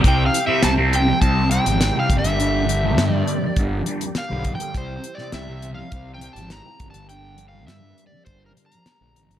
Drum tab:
HH |x-x-x-x-x-xxx-xx|x-x-x-x-x-xxx-xx|x-x-x-x-x-xxx-xx|x-x-x-x-x-xxx-xx|
SD |----o-------o---|----o-------o---|---oo-------o---|----o-------o---|
BD |o-------o-----o-|--------o-----o-|o-------o-----o-|--------o-------|